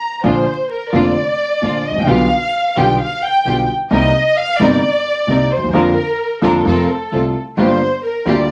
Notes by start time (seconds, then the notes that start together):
Already playing: A#5
0.23 A#1 A#2 D3 F3 A#3 D4 F4 C5
0.71 A#4
0.92 F1 F2 D3 F3 A#3 D4 F4 D5
1.61 A#1 A#2 D3 F3 A#3 D4 F4
1.86 D#5
1.91 G#1
1.96 A1
2.00 A#1 G5
2.06 B1 B2 D3 G3 B3 F4 G4 F5
2.76 B1 B2 D3 G3 B3 F4 G4 G5
3.00 F5
3.23 G5
3.45 B1 B2 D3 G3 B3 F4 G4
3.91 C2 C3 G3 A#3 C4 D#4 A#4 D#5
4.37 F5
4.58 G1 G2 C3 G3 A#3 C4 D#4 A#4 D5
5.27 C2 C3 G3 A#3 C4 D#4 A#4
5.51 C5
5.57 D2
5.62 D#2
5.68 E2
5.73 F2 D3 F3 A#3 D4 F4 A#4
6.41 F2 D3 F3 A#3 D4 F4 A4 A#4
6.65 F2 C3 F3 A3 C4 F4 A4 A#4
6.90 A4
7.12 C2 C3 F3 A3 C4 F4 A4
7.57 G1 G2 D3 G3 A#3 F4 G4 C5
8.05 A#4
8.25 D2 D3 G3 A#3 F4 G4 D5